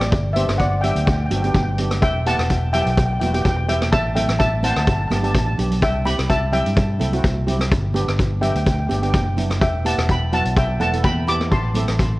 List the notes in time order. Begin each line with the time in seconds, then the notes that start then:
Already playing: A1 C4 E4 G4 D5 G5
0.01 cross-stick, closed hi-hat, high conga
0.12 G1, kick, closed hi-hat
0.33 B3 D4 G4 C5 E5, closed hi-hat, high conga
0.48 G1, cross-stick, closed hi-hat
0.58 D5 F#5, kick, closed hi-hat
0.81 B3 D4 G4 E5 G5, closed hi-hat, low conga
0.89 G5
0.96 D2 G5, closed hi-hat
1.05 G5, kick, closed hi-hat
1.12 G5
1.20 G5
1.26 G5
1.30 G1 B3 D4 F#4, closed hi-hat, high conga, low conga
1.35 G5
1.42 B3 D4 G4 G5, closed hi-hat
1.49 G5
1.55 G1 G5, kick, closed hi-hat, high conga
1.63 G5
1.78 B3 D4 G4, closed hi-hat, low conga
1.91 cross-stick, closed hi-hat, high conga
2.02 E1 E5 G5, kick, closed hi-hat
2.26 B3 E4 G4 F#5 A5, closed hi-hat, high conga
2.38 E1, cross-stick, closed hi-hat
2.50 kick, closed hi-hat
2.73 B3 E4 G4 E5 G5, closed hi-hat, low conga
2.82 G5
2.86 B1 G5, closed hi-hat
2.97 G5, kick, closed hi-hat
3.06 G5
3.13 G5
3.19 E1 B3 E4 F#4 G5, closed hi-hat, high conga, low conga
3.27 G5
3.33 B3 E4 G4 G5, closed hi-hat
3.41 E1 G5, kick, closed hi-hat
3.45 G5, high conga
3.56 G5
3.68 B3 E4 G4 E5 G5, closed hi-hat, low conga
3.81 cross-stick, closed hi-hat, high conga
3.92 A1 E5 A5, kick, closed hi-hat
4.15 C4 E4 A4 E5 G5, closed hi-hat, high conga, low conga
4.29 A1, cross-stick, closed hi-hat
4.39 E5 A5, kick, closed hi-hat
4.63 C4 E4 C5 F#5 A5, closed hi-hat, high conga, low conga
4.71 A5
4.76 D2 A5, cross-stick, closed hi-hat
4.85 G1 A5, kick, closed hi-hat
4.93 A5
5.01 A5
5.08 G1 B3 D4 G4 A5, cross-stick, closed hi-hat, high conga, low conga
5.17 A5
5.23 B3 D4 G4 A5, closed hi-hat
5.31 A1 A5, kick, closed hi-hat, high conga
5.39 A5
5.46 A5, high conga
5.58 B1 B3 D4 G4, closed hi-hat, low conga
5.71 closed hi-hat, low conga
5.82 C2 E5 G5, kick, closed hi-hat
6.05 C4 E4 G4 G5 B5, closed hi-hat, high conga
6.18 C2, cross-stick, closed hi-hat
6.29 E5 A5, kick, closed hi-hat
6.52 C4 E4 G4 E5 G5, closed hi-hat, low conga
6.66 G2, closed hi-hat
6.77 kick, closed hi-hat
6.99 C2 C4 E4 A4, closed hi-hat, high conga, low conga
7.13 C4 E4 F#4, closed hi-hat
7.24 C2, kick, closed hi-hat, high conga
7.47 C4 E4 G4, closed hi-hat, low conga
7.59 cross-stick, closed hi-hat, high conga
7.72 G1, kick, closed hi-hat
7.94 B3 D4 G4, closed hi-hat, high conga
8.08 G1, cross-stick, closed hi-hat
8.19 kick, closed hi-hat
8.41 B3 D4 G4 E5 G5, closed hi-hat, low conga
8.50 G5
8.55 D2 G5, closed hi-hat
8.63 G5, kick, closed hi-hat
8.71 G5
8.79 G5
8.86 G1 B3 D4 G4 G5, high conga, low conga
8.91 closed hi-hat
8.95 G5
9.02 B3 D4 G4 G5, closed hi-hat
9.09 G5
9.14 F#1 G5, kick, closed hi-hat, high conga
9.25 G5
9.37 B3 D4 E4, closed hi-hat, low conga
9.50 cross-stick, closed hi-hat, high conga
9.61 E1 E5 G5, kick, closed hi-hat
9.84 B3 E4 G4 F#5 A5, closed hi-hat, high conga
9.98 E1, cross-stick, closed hi-hat
10.09 G5 B5, kick, closed hi-hat
10.32 B3 E4 F#4 F#5 A5, closed hi-hat, low conga
10.45 B1, closed hi-hat
10.56 E5 G5, kick, closed hi-hat
10.80 E1 B3 E4 A4 F#5 A5, closed hi-hat, high conga, low conga
10.93 B3 E4 A4, closed hi-hat
11.04 E2 G5 B5, kick, closed hi-hat, high conga
11.27 B3 E4 G4 B5 D6, closed hi-hat, low conga
11.40 cross-stick, closed hi-hat, high conga
11.51 A1 A5 C6, kick, closed hi-hat
11.74 C4 E4 A4, closed hi-hat, high conga, low conga
11.88 A1, cross-stick, closed hi-hat
11.99 kick, closed hi-hat